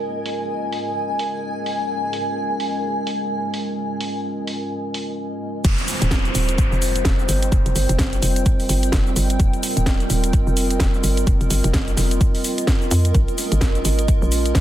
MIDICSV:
0, 0, Header, 1, 6, 480
1, 0, Start_track
1, 0, Key_signature, -4, "minor"
1, 0, Tempo, 468750
1, 23, Time_signature, 4, 2, 24, 8
1, 14956, End_track
2, 0, Start_track
2, 0, Title_t, "Ambient pad"
2, 0, Program_c, 0, 92
2, 0, Note_on_c, 0, 70, 75
2, 0, Note_on_c, 0, 75, 83
2, 0, Note_on_c, 0, 80, 91
2, 5302, Note_off_c, 0, 70, 0
2, 5302, Note_off_c, 0, 75, 0
2, 5302, Note_off_c, 0, 80, 0
2, 5782, Note_on_c, 0, 70, 80
2, 6123, Note_on_c, 0, 75, 90
2, 6648, Note_on_c, 0, 79, 85
2, 13462, Note_off_c, 0, 79, 0
2, 14414, Note_on_c, 0, 80, 77
2, 14956, Note_off_c, 0, 70, 0
2, 14956, Note_off_c, 0, 75, 0
2, 14956, Note_off_c, 0, 80, 0
2, 14956, End_track
3, 0, Start_track
3, 0, Title_t, "Analog synth pad"
3, 0, Program_c, 1, 89
3, 0, Note_on_c, 1, 56, 81
3, 0, Note_on_c, 1, 61, 74
3, 0, Note_on_c, 1, 65, 72
3, 0, Note_on_c, 1, 70, 91
3, 5740, Note_off_c, 1, 70, 0
3, 5741, Note_off_c, 1, 56, 0
3, 5741, Note_off_c, 1, 61, 0
3, 5742, Note_off_c, 1, 65, 0
3, 5781, Note_on_c, 1, 60, 80
3, 5781, Note_on_c, 1, 65, 78
3, 5782, Note_on_c, 1, 55, 86
3, 5782, Note_on_c, 1, 72, 91
3, 9584, Note_off_c, 1, 72, 0
3, 9622, Note_on_c, 1, 70, 90
3, 13421, Note_off_c, 1, 55, 0
3, 13421, Note_off_c, 1, 60, 0
3, 13424, Note_off_c, 1, 70, 0
3, 13461, Note_on_c, 1, 70, 94
3, 13462, Note_on_c, 1, 56, 89
3, 13462, Note_on_c, 1, 61, 77
3, 14956, Note_off_c, 1, 56, 0
3, 14956, Note_off_c, 1, 61, 0
3, 14956, Note_off_c, 1, 65, 0
3, 14956, Note_off_c, 1, 70, 0
3, 14956, End_track
4, 0, Start_track
4, 0, Title_t, "FM bass"
4, 0, Program_c, 2, 39
4, 5782, Note_on_c, 2, 29, 95
4, 5900, Note_off_c, 2, 29, 0
4, 6162, Note_on_c, 2, 27, 99
4, 6486, Note_off_c, 2, 27, 0
4, 6503, Note_on_c, 2, 27, 98
4, 6860, Note_off_c, 2, 27, 0
4, 6883, Note_on_c, 2, 29, 97
4, 7206, Note_off_c, 2, 29, 0
4, 7221, Note_on_c, 2, 29, 97
4, 7446, Note_off_c, 2, 29, 0
4, 7462, Note_on_c, 2, 31, 98
4, 7686, Note_off_c, 2, 31, 0
4, 7702, Note_on_c, 2, 29, 96
4, 7820, Note_off_c, 2, 29, 0
4, 7843, Note_on_c, 2, 29, 99
4, 7926, Note_off_c, 2, 29, 0
4, 7942, Note_on_c, 2, 31, 94
4, 8060, Note_off_c, 2, 31, 0
4, 8083, Note_on_c, 2, 29, 95
4, 8166, Note_off_c, 2, 29, 0
4, 8182, Note_on_c, 2, 31, 96
4, 8406, Note_off_c, 2, 31, 0
4, 8422, Note_on_c, 2, 29, 93
4, 8646, Note_off_c, 2, 29, 0
4, 8902, Note_on_c, 2, 31, 96
4, 9126, Note_off_c, 2, 31, 0
4, 9142, Note_on_c, 2, 29, 96
4, 9366, Note_off_c, 2, 29, 0
4, 9383, Note_on_c, 2, 31, 98
4, 9607, Note_off_c, 2, 31, 0
4, 9622, Note_on_c, 2, 29, 96
4, 9740, Note_off_c, 2, 29, 0
4, 10002, Note_on_c, 2, 27, 96
4, 10326, Note_off_c, 2, 27, 0
4, 10342, Note_on_c, 2, 27, 101
4, 10700, Note_off_c, 2, 27, 0
4, 10723, Note_on_c, 2, 29, 101
4, 11046, Note_off_c, 2, 29, 0
4, 11062, Note_on_c, 2, 29, 95
4, 11286, Note_off_c, 2, 29, 0
4, 11301, Note_on_c, 2, 31, 95
4, 11525, Note_off_c, 2, 31, 0
4, 11541, Note_on_c, 2, 29, 99
4, 11660, Note_off_c, 2, 29, 0
4, 11682, Note_on_c, 2, 29, 99
4, 11766, Note_off_c, 2, 29, 0
4, 11782, Note_on_c, 2, 31, 96
4, 11900, Note_off_c, 2, 31, 0
4, 11923, Note_on_c, 2, 29, 96
4, 12006, Note_off_c, 2, 29, 0
4, 12021, Note_on_c, 2, 31, 96
4, 12246, Note_off_c, 2, 31, 0
4, 12261, Note_on_c, 2, 29, 97
4, 12486, Note_off_c, 2, 29, 0
4, 13223, Note_on_c, 2, 41, 100
4, 13446, Note_off_c, 2, 41, 0
4, 13461, Note_on_c, 2, 34, 96
4, 13580, Note_off_c, 2, 34, 0
4, 13843, Note_on_c, 2, 32, 97
4, 14166, Note_off_c, 2, 32, 0
4, 14182, Note_on_c, 2, 32, 97
4, 14540, Note_off_c, 2, 32, 0
4, 14563, Note_on_c, 2, 34, 100
4, 14886, Note_off_c, 2, 34, 0
4, 14901, Note_on_c, 2, 34, 99
4, 14956, Note_off_c, 2, 34, 0
4, 14956, End_track
5, 0, Start_track
5, 0, Title_t, "Downlifter"
5, 0, Program_c, 3, 103
5, 5782, Note_on_c, 3, 60, 78
5, 9622, Note_off_c, 3, 60, 0
5, 14956, End_track
6, 0, Start_track
6, 0, Title_t, "Drums"
6, 262, Note_on_c, 9, 46, 89
6, 365, Note_off_c, 9, 46, 0
6, 742, Note_on_c, 9, 46, 91
6, 845, Note_off_c, 9, 46, 0
6, 1222, Note_on_c, 9, 46, 94
6, 1325, Note_off_c, 9, 46, 0
6, 1702, Note_on_c, 9, 46, 93
6, 1804, Note_off_c, 9, 46, 0
6, 2182, Note_on_c, 9, 46, 88
6, 2284, Note_off_c, 9, 46, 0
6, 2662, Note_on_c, 9, 46, 95
6, 2764, Note_off_c, 9, 46, 0
6, 3142, Note_on_c, 9, 46, 90
6, 3244, Note_off_c, 9, 46, 0
6, 3622, Note_on_c, 9, 46, 94
6, 3724, Note_off_c, 9, 46, 0
6, 4102, Note_on_c, 9, 46, 95
6, 4204, Note_off_c, 9, 46, 0
6, 4582, Note_on_c, 9, 46, 96
6, 4684, Note_off_c, 9, 46, 0
6, 5062, Note_on_c, 9, 46, 94
6, 5165, Note_off_c, 9, 46, 0
6, 5781, Note_on_c, 9, 36, 124
6, 5782, Note_on_c, 9, 42, 71
6, 5782, Note_on_c, 9, 49, 102
6, 5783, Note_on_c, 9, 69, 45
6, 5884, Note_off_c, 9, 36, 0
6, 5884, Note_off_c, 9, 42, 0
6, 5884, Note_off_c, 9, 49, 0
6, 5885, Note_off_c, 9, 69, 0
6, 5922, Note_on_c, 9, 42, 40
6, 5923, Note_on_c, 9, 69, 22
6, 6021, Note_on_c, 9, 46, 107
6, 6022, Note_off_c, 9, 69, 0
6, 6022, Note_on_c, 9, 69, 80
6, 6025, Note_off_c, 9, 42, 0
6, 6123, Note_off_c, 9, 46, 0
6, 6124, Note_off_c, 9, 69, 0
6, 6163, Note_on_c, 9, 42, 58
6, 6163, Note_on_c, 9, 69, 35
6, 6256, Note_on_c, 9, 38, 120
6, 6261, Note_on_c, 9, 36, 99
6, 6262, Note_off_c, 9, 42, 0
6, 6262, Note_off_c, 9, 69, 0
6, 6262, Note_on_c, 9, 42, 69
6, 6262, Note_on_c, 9, 69, 43
6, 6359, Note_off_c, 9, 38, 0
6, 6363, Note_off_c, 9, 36, 0
6, 6364, Note_off_c, 9, 42, 0
6, 6365, Note_off_c, 9, 69, 0
6, 6402, Note_on_c, 9, 42, 38
6, 6403, Note_on_c, 9, 69, 22
6, 6501, Note_on_c, 9, 46, 108
6, 6502, Note_off_c, 9, 69, 0
6, 6502, Note_on_c, 9, 69, 81
6, 6505, Note_off_c, 9, 42, 0
6, 6604, Note_off_c, 9, 46, 0
6, 6604, Note_off_c, 9, 69, 0
6, 6642, Note_on_c, 9, 42, 54
6, 6643, Note_on_c, 9, 69, 35
6, 6741, Note_on_c, 9, 36, 120
6, 6742, Note_off_c, 9, 42, 0
6, 6742, Note_on_c, 9, 42, 68
6, 6743, Note_off_c, 9, 69, 0
6, 6743, Note_on_c, 9, 69, 47
6, 6843, Note_off_c, 9, 36, 0
6, 6844, Note_off_c, 9, 42, 0
6, 6845, Note_off_c, 9, 69, 0
6, 6883, Note_on_c, 9, 69, 22
6, 6982, Note_on_c, 9, 46, 108
6, 6983, Note_off_c, 9, 69, 0
6, 6983, Note_on_c, 9, 69, 76
6, 7085, Note_off_c, 9, 46, 0
6, 7086, Note_off_c, 9, 69, 0
6, 7123, Note_on_c, 9, 42, 56
6, 7123, Note_on_c, 9, 69, 34
6, 7217, Note_on_c, 9, 38, 124
6, 7221, Note_on_c, 9, 36, 105
6, 7222, Note_off_c, 9, 42, 0
6, 7222, Note_on_c, 9, 42, 71
6, 7223, Note_off_c, 9, 69, 0
6, 7223, Note_on_c, 9, 69, 46
6, 7319, Note_off_c, 9, 38, 0
6, 7324, Note_off_c, 9, 36, 0
6, 7324, Note_off_c, 9, 42, 0
6, 7325, Note_off_c, 9, 69, 0
6, 7364, Note_on_c, 9, 69, 22
6, 7462, Note_on_c, 9, 46, 107
6, 7463, Note_off_c, 9, 69, 0
6, 7463, Note_on_c, 9, 69, 84
6, 7565, Note_off_c, 9, 46, 0
6, 7565, Note_off_c, 9, 69, 0
6, 7603, Note_on_c, 9, 42, 56
6, 7604, Note_on_c, 9, 69, 34
6, 7701, Note_on_c, 9, 36, 127
6, 7703, Note_off_c, 9, 42, 0
6, 7703, Note_off_c, 9, 69, 0
6, 7703, Note_on_c, 9, 42, 66
6, 7703, Note_on_c, 9, 69, 45
6, 7803, Note_off_c, 9, 36, 0
6, 7805, Note_off_c, 9, 42, 0
6, 7806, Note_off_c, 9, 69, 0
6, 7843, Note_on_c, 9, 42, 39
6, 7844, Note_on_c, 9, 69, 22
6, 7943, Note_off_c, 9, 69, 0
6, 7943, Note_on_c, 9, 46, 109
6, 7943, Note_on_c, 9, 69, 75
6, 7946, Note_off_c, 9, 42, 0
6, 8045, Note_off_c, 9, 46, 0
6, 8046, Note_off_c, 9, 69, 0
6, 8083, Note_on_c, 9, 42, 55
6, 8084, Note_on_c, 9, 69, 35
6, 8177, Note_on_c, 9, 38, 122
6, 8181, Note_on_c, 9, 36, 110
6, 8182, Note_off_c, 9, 42, 0
6, 8182, Note_on_c, 9, 42, 67
6, 8183, Note_off_c, 9, 69, 0
6, 8183, Note_on_c, 9, 69, 45
6, 8280, Note_off_c, 9, 38, 0
6, 8284, Note_off_c, 9, 36, 0
6, 8285, Note_off_c, 9, 42, 0
6, 8286, Note_off_c, 9, 69, 0
6, 8323, Note_on_c, 9, 42, 37
6, 8324, Note_on_c, 9, 69, 23
6, 8423, Note_off_c, 9, 69, 0
6, 8423, Note_on_c, 9, 46, 112
6, 8423, Note_on_c, 9, 69, 74
6, 8426, Note_off_c, 9, 42, 0
6, 8525, Note_off_c, 9, 46, 0
6, 8526, Note_off_c, 9, 69, 0
6, 8563, Note_on_c, 9, 42, 51
6, 8564, Note_on_c, 9, 69, 32
6, 8662, Note_on_c, 9, 36, 119
6, 8663, Note_off_c, 9, 42, 0
6, 8663, Note_off_c, 9, 69, 0
6, 8663, Note_on_c, 9, 42, 70
6, 8663, Note_on_c, 9, 69, 42
6, 8764, Note_off_c, 9, 36, 0
6, 8765, Note_off_c, 9, 42, 0
6, 8766, Note_off_c, 9, 69, 0
6, 8803, Note_on_c, 9, 46, 64
6, 8804, Note_on_c, 9, 69, 21
6, 8902, Note_off_c, 9, 46, 0
6, 8902, Note_off_c, 9, 69, 0
6, 8902, Note_on_c, 9, 46, 107
6, 8902, Note_on_c, 9, 69, 76
6, 9004, Note_off_c, 9, 46, 0
6, 9005, Note_off_c, 9, 69, 0
6, 9042, Note_on_c, 9, 42, 57
6, 9043, Note_on_c, 9, 69, 31
6, 9137, Note_on_c, 9, 38, 127
6, 9142, Note_off_c, 9, 42, 0
6, 9142, Note_off_c, 9, 69, 0
6, 9142, Note_on_c, 9, 36, 101
6, 9142, Note_on_c, 9, 42, 68
6, 9142, Note_on_c, 9, 69, 45
6, 9239, Note_off_c, 9, 38, 0
6, 9244, Note_off_c, 9, 36, 0
6, 9244, Note_off_c, 9, 42, 0
6, 9245, Note_off_c, 9, 69, 0
6, 9283, Note_on_c, 9, 69, 20
6, 9382, Note_on_c, 9, 46, 109
6, 9383, Note_off_c, 9, 69, 0
6, 9383, Note_on_c, 9, 69, 78
6, 9484, Note_off_c, 9, 46, 0
6, 9485, Note_off_c, 9, 69, 0
6, 9523, Note_on_c, 9, 42, 53
6, 9524, Note_on_c, 9, 69, 32
6, 9622, Note_off_c, 9, 42, 0
6, 9622, Note_on_c, 9, 36, 127
6, 9622, Note_on_c, 9, 42, 65
6, 9623, Note_off_c, 9, 69, 0
6, 9623, Note_on_c, 9, 69, 44
6, 9724, Note_off_c, 9, 36, 0
6, 9725, Note_off_c, 9, 42, 0
6, 9726, Note_off_c, 9, 69, 0
6, 9763, Note_on_c, 9, 42, 35
6, 9764, Note_on_c, 9, 69, 21
6, 9863, Note_off_c, 9, 69, 0
6, 9863, Note_on_c, 9, 46, 113
6, 9863, Note_on_c, 9, 69, 79
6, 9866, Note_off_c, 9, 42, 0
6, 9965, Note_off_c, 9, 46, 0
6, 9966, Note_off_c, 9, 69, 0
6, 10003, Note_on_c, 9, 42, 53
6, 10004, Note_on_c, 9, 69, 34
6, 10098, Note_on_c, 9, 38, 117
6, 10101, Note_on_c, 9, 36, 111
6, 10103, Note_off_c, 9, 42, 0
6, 10103, Note_on_c, 9, 42, 62
6, 10104, Note_off_c, 9, 69, 0
6, 10104, Note_on_c, 9, 69, 42
6, 10200, Note_off_c, 9, 38, 0
6, 10204, Note_off_c, 9, 36, 0
6, 10205, Note_off_c, 9, 42, 0
6, 10206, Note_off_c, 9, 69, 0
6, 10243, Note_on_c, 9, 42, 36
6, 10244, Note_on_c, 9, 69, 22
6, 10342, Note_off_c, 9, 69, 0
6, 10342, Note_on_c, 9, 46, 109
6, 10342, Note_on_c, 9, 69, 73
6, 10346, Note_off_c, 9, 42, 0
6, 10444, Note_off_c, 9, 46, 0
6, 10445, Note_off_c, 9, 69, 0
6, 10482, Note_on_c, 9, 42, 52
6, 10483, Note_on_c, 9, 69, 31
6, 10581, Note_on_c, 9, 36, 127
6, 10582, Note_off_c, 9, 42, 0
6, 10582, Note_off_c, 9, 69, 0
6, 10582, Note_on_c, 9, 42, 68
6, 10582, Note_on_c, 9, 69, 45
6, 10683, Note_off_c, 9, 36, 0
6, 10684, Note_off_c, 9, 42, 0
6, 10685, Note_off_c, 9, 69, 0
6, 10723, Note_on_c, 9, 69, 21
6, 10821, Note_on_c, 9, 46, 109
6, 10822, Note_off_c, 9, 69, 0
6, 10822, Note_on_c, 9, 69, 74
6, 10924, Note_off_c, 9, 46, 0
6, 10924, Note_off_c, 9, 69, 0
6, 10962, Note_on_c, 9, 42, 52
6, 10963, Note_on_c, 9, 69, 31
6, 11056, Note_on_c, 9, 38, 127
6, 11061, Note_off_c, 9, 42, 0
6, 11061, Note_on_c, 9, 36, 108
6, 11061, Note_on_c, 9, 42, 65
6, 11062, Note_off_c, 9, 69, 0
6, 11062, Note_on_c, 9, 69, 43
6, 11158, Note_off_c, 9, 38, 0
6, 11164, Note_off_c, 9, 36, 0
6, 11164, Note_off_c, 9, 42, 0
6, 11164, Note_off_c, 9, 69, 0
6, 11203, Note_on_c, 9, 69, 21
6, 11301, Note_on_c, 9, 46, 115
6, 11302, Note_off_c, 9, 69, 0
6, 11302, Note_on_c, 9, 69, 77
6, 11404, Note_off_c, 9, 46, 0
6, 11404, Note_off_c, 9, 69, 0
6, 11442, Note_on_c, 9, 42, 56
6, 11442, Note_on_c, 9, 69, 34
6, 11541, Note_on_c, 9, 36, 127
6, 11542, Note_off_c, 9, 42, 0
6, 11542, Note_off_c, 9, 69, 0
6, 11542, Note_on_c, 9, 42, 63
6, 11542, Note_on_c, 9, 69, 42
6, 11643, Note_off_c, 9, 36, 0
6, 11644, Note_off_c, 9, 42, 0
6, 11645, Note_off_c, 9, 69, 0
6, 11682, Note_on_c, 9, 42, 36
6, 11683, Note_on_c, 9, 69, 23
6, 11781, Note_on_c, 9, 46, 112
6, 11782, Note_off_c, 9, 69, 0
6, 11782, Note_on_c, 9, 69, 77
6, 11784, Note_off_c, 9, 42, 0
6, 11883, Note_off_c, 9, 46, 0
6, 11884, Note_off_c, 9, 69, 0
6, 11922, Note_on_c, 9, 42, 52
6, 11922, Note_on_c, 9, 69, 34
6, 12016, Note_on_c, 9, 38, 111
6, 12021, Note_on_c, 9, 36, 106
6, 12022, Note_off_c, 9, 42, 0
6, 12022, Note_off_c, 9, 69, 0
6, 12022, Note_on_c, 9, 42, 63
6, 12022, Note_on_c, 9, 69, 42
6, 12119, Note_off_c, 9, 38, 0
6, 12123, Note_off_c, 9, 36, 0
6, 12124, Note_off_c, 9, 42, 0
6, 12125, Note_off_c, 9, 69, 0
6, 12162, Note_on_c, 9, 42, 36
6, 12163, Note_on_c, 9, 69, 23
6, 12257, Note_on_c, 9, 38, 37
6, 12262, Note_on_c, 9, 46, 114
6, 12263, Note_off_c, 9, 69, 0
6, 12263, Note_on_c, 9, 69, 77
6, 12265, Note_off_c, 9, 42, 0
6, 12359, Note_off_c, 9, 38, 0
6, 12364, Note_off_c, 9, 46, 0
6, 12365, Note_off_c, 9, 69, 0
6, 12403, Note_on_c, 9, 42, 53
6, 12404, Note_on_c, 9, 69, 31
6, 12501, Note_on_c, 9, 36, 127
6, 12502, Note_off_c, 9, 42, 0
6, 12502, Note_on_c, 9, 42, 65
6, 12503, Note_off_c, 9, 69, 0
6, 12503, Note_on_c, 9, 69, 47
6, 12603, Note_off_c, 9, 36, 0
6, 12605, Note_off_c, 9, 42, 0
6, 12606, Note_off_c, 9, 69, 0
6, 12643, Note_on_c, 9, 46, 61
6, 12644, Note_on_c, 9, 69, 20
6, 12742, Note_off_c, 9, 46, 0
6, 12742, Note_on_c, 9, 46, 108
6, 12743, Note_off_c, 9, 69, 0
6, 12743, Note_on_c, 9, 69, 77
6, 12845, Note_off_c, 9, 46, 0
6, 12845, Note_off_c, 9, 69, 0
6, 12883, Note_on_c, 9, 42, 50
6, 12884, Note_on_c, 9, 69, 34
6, 12977, Note_on_c, 9, 38, 120
6, 12981, Note_on_c, 9, 36, 107
6, 12982, Note_off_c, 9, 42, 0
6, 12982, Note_on_c, 9, 42, 60
6, 12983, Note_off_c, 9, 69, 0
6, 12983, Note_on_c, 9, 69, 44
6, 13080, Note_off_c, 9, 38, 0
6, 13083, Note_off_c, 9, 36, 0
6, 13085, Note_off_c, 9, 42, 0
6, 13085, Note_off_c, 9, 69, 0
6, 13124, Note_on_c, 9, 69, 22
6, 13222, Note_on_c, 9, 46, 112
6, 13223, Note_off_c, 9, 69, 0
6, 13223, Note_on_c, 9, 69, 81
6, 13325, Note_off_c, 9, 46, 0
6, 13325, Note_off_c, 9, 69, 0
6, 13363, Note_on_c, 9, 42, 52
6, 13363, Note_on_c, 9, 69, 33
6, 13461, Note_on_c, 9, 36, 120
6, 13462, Note_off_c, 9, 42, 0
6, 13462, Note_off_c, 9, 69, 0
6, 13462, Note_on_c, 9, 42, 63
6, 13462, Note_on_c, 9, 69, 42
6, 13563, Note_off_c, 9, 36, 0
6, 13564, Note_off_c, 9, 42, 0
6, 13565, Note_off_c, 9, 69, 0
6, 13603, Note_on_c, 9, 42, 36
6, 13603, Note_on_c, 9, 69, 24
6, 13702, Note_off_c, 9, 69, 0
6, 13702, Note_on_c, 9, 46, 108
6, 13702, Note_on_c, 9, 69, 79
6, 13705, Note_off_c, 9, 42, 0
6, 13804, Note_off_c, 9, 46, 0
6, 13805, Note_off_c, 9, 69, 0
6, 13842, Note_on_c, 9, 42, 53
6, 13843, Note_on_c, 9, 69, 33
6, 13937, Note_on_c, 9, 38, 116
6, 13941, Note_on_c, 9, 36, 103
6, 13942, Note_off_c, 9, 42, 0
6, 13942, Note_off_c, 9, 69, 0
6, 13942, Note_on_c, 9, 42, 65
6, 13942, Note_on_c, 9, 69, 45
6, 14039, Note_off_c, 9, 38, 0
6, 14043, Note_off_c, 9, 36, 0
6, 14044, Note_off_c, 9, 42, 0
6, 14045, Note_off_c, 9, 69, 0
6, 14082, Note_on_c, 9, 42, 36
6, 14083, Note_on_c, 9, 69, 24
6, 14182, Note_on_c, 9, 46, 108
6, 14183, Note_off_c, 9, 69, 0
6, 14183, Note_on_c, 9, 69, 79
6, 14185, Note_off_c, 9, 42, 0
6, 14284, Note_off_c, 9, 46, 0
6, 14285, Note_off_c, 9, 69, 0
6, 14322, Note_on_c, 9, 42, 53
6, 14323, Note_on_c, 9, 69, 34
6, 14421, Note_on_c, 9, 36, 125
6, 14422, Note_off_c, 9, 42, 0
6, 14422, Note_off_c, 9, 69, 0
6, 14422, Note_on_c, 9, 42, 67
6, 14422, Note_on_c, 9, 69, 46
6, 14524, Note_off_c, 9, 36, 0
6, 14524, Note_off_c, 9, 42, 0
6, 14525, Note_off_c, 9, 69, 0
6, 14563, Note_on_c, 9, 69, 22
6, 14661, Note_on_c, 9, 46, 109
6, 14662, Note_off_c, 9, 69, 0
6, 14662, Note_on_c, 9, 69, 76
6, 14764, Note_off_c, 9, 46, 0
6, 14764, Note_off_c, 9, 69, 0
6, 14802, Note_on_c, 9, 42, 51
6, 14803, Note_on_c, 9, 69, 32
6, 14897, Note_on_c, 9, 38, 113
6, 14901, Note_on_c, 9, 36, 102
6, 14902, Note_off_c, 9, 42, 0
6, 14902, Note_on_c, 9, 42, 61
6, 14903, Note_off_c, 9, 69, 0
6, 14903, Note_on_c, 9, 69, 46
6, 14956, Note_off_c, 9, 36, 0
6, 14956, Note_off_c, 9, 38, 0
6, 14956, Note_off_c, 9, 42, 0
6, 14956, Note_off_c, 9, 69, 0
6, 14956, End_track
0, 0, End_of_file